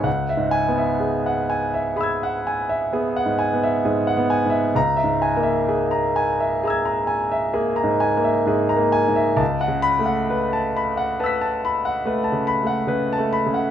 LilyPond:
<<
  \new Staff \with { instrumentName = "Grand piano" } { \time 5/4 \key e \major \tempo 4 = 65 << { r8 gis''8 r4 <b'' e''' gis'''>2. | ais''8 r4. <ais'' e''' gis'''>2. | r8 b''8 r4 <a'' e''' b'''>2. | } \\ { fis''16 e''8 e''16 gis'16 fis''16 gis''16 e''16 gis'16 fis''16 gis''16 e''16 gis'16 fis''16 gis''16 e''16 gis'16 fis''16 gis''16 e''16 | r16 e''16 gis''16 e''16 gis'16 ais''16 gis''16 e''16 gis'16 ais''16 gis''16 e''16 gis'16 ais''16 gis''16 e''16 gis'16 ais''16 gis''16 e''16 | a''16 fis''8 fis''16 b'16 a''16 b''16 fis''16 b'16 a''16 b''16 fis''16 b'16 a''16 b''16 fis''16 b'16 a''16 b''16 fis''16 | } >> }
  \new Staff \with { instrumentName = "Grand piano" } { \clef bass \time 5/4 \key e \major \tuplet 3/2 { cis,8 gis,8 b8 } r2 \tuplet 3/2 { b8 gis,8 b8 gis,8 b8 gis,8 } | \tuplet 3/2 { cis,8 gis,8 ais8 } r2 \tuplet 3/2 { ais8 gis,8 ais8 gis,8 ais8 gis,8 } | \tuplet 3/2 { cis,8 cis8 a8 } r2 \tuplet 3/2 { a8 cis8 a8 cis8 a8 cis8 } | }
>>